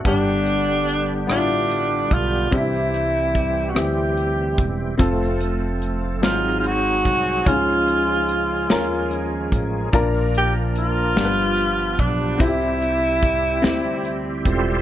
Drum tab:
HH |xxxxxx|xxxxxx|xxxxxx|xxxxxx|
SD |---r--|--rr--|---o--|---o--|
BD |o----o|o-o--o|o----o|o----o|

HH |xxxxxx|xxxxxx|
SD |---o--|---o--|
BD |o----o|o-o--o|